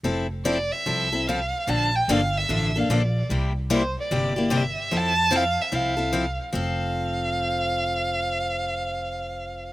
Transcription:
X:1
M:4/4
L:1/16
Q:"Swing" 1/4=148
K:F
V:1 name="Violin"
z4 d2 e6 f4 | a2 g2 f2 e4 f2 d3 z | z4 c2 d6 e4 | a4 f2 e2 f6 z2 |
f16- | f16 |]
V:2 name="Steel-string acoustic guitar"
[F,CEA]2 z2 [F,CEA]2 z2 [F,CEA]2 [CEA]2 [F,CEA]2 z2 | [D,F,B,DA]2 z2 [D,F,B,DA]2 z2 [D,F,B,DA]2 [B,DA]2 [D,F,B,DA]2 z2 | [C,G,B,EG]2 z2 [C,G,B,EG]2 z2 [C,G,B,EG]2 [B,EG]2 [C,G,B,EG]2 z2 | [F,CEA]2 z2 [F,CEA]2 z2 [F,CEA]2 [CEA]2 [F,CEA]2 z2 |
[F,CA]16- | [F,CA]16 |]
V:3 name="Upright bass" clef=bass
F,,,8 C,,8 | B,,,4 G,,,4 A,,,4 B,,,4 | C,,8 G,,,8 | F,,8 C,,8 |
F,,,16- | F,,,16 |]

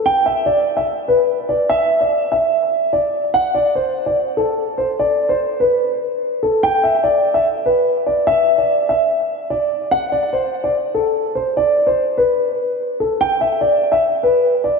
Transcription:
X:1
M:4/4
L:1/16
Q:1/4=146
K:Em
V:1 name="Grand piano"
g2 e2 d3 e z2 B4 d2 | e3 d3 e6 d4 | f2 d2 c3 d z2 A4 c2 | d3 c3 B8 A2 |
g2 e2 d3 e z2 B4 d2 | e3 d3 e6 d4 | f2 d2 c3 d z2 A4 c2 | d3 c3 B8 A2 |
g2 e2 d3 e z2 B4 d2 |]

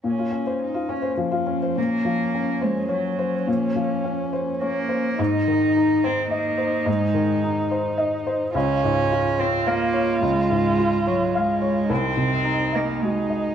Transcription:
X:1
M:3/4
L:1/16
Q:1/4=107
K:Bbm
V:1 name="Felt piano"
B,, F D c2 F D c F, F D c | B,,2 F,2 D2 c2 d2 c2 | B,,2 F,2 D2 c2 d2 c2 | A,,2 E,2 E2 c2 e2 c2 |
A,,2 E,2 E2 c2 e2 c2 | D,,2 A,,2 F2 d2 f2 d2 | D,,2 A,,2 F2 d2 f2 d2 | C,,2 C,2 E2 e2 G2 e2 |]
V:2 name="Viola"
z12 | D12- | D12 | E12- |
E12 | F12- | F12 | E12 |]
V:3 name="Cello"
D4 E2 D2 F,4 | B,6 A,2 G,4 | F,6 z2 B,4 | E6 C2 B,4 |
A,6 z6 | D6 C2 B,4 | A,6 G,2 A,4 | C6 B,2 A,4 |]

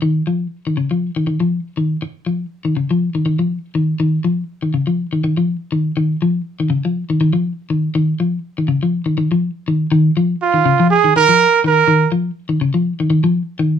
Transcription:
X:1
M:4/4
L:1/16
Q:"Swing 16ths" 1/4=122
K:Dblyd
V:1 name="Trumpet"
z16 | z16 | z16 | z16 |
z16 | z4 F4 A2 B4 B2- | B2 z12 z2 |]
V:2 name="Clean electric guitar" clef=bass
E,2 F,2 z E, D, F,2 E, E, F,2 z E,2 | z2 F,2 z E, D, F,2 E, E, F,2 z E,2 | E,2 F,2 z E, D, F,2 E, E, F,2 z E,2 | E,2 F,2 z E, D, F,2 E, E, F,2 z E,2 |
E,2 F,2 z E, D, F,2 E, E, F,2 z E,2 | E,2 F,2 z E, D, F,2 E, E, F,2 z E,2 | E,2 F,2 z E, D, F,2 E, E, F,2 z E,2 |]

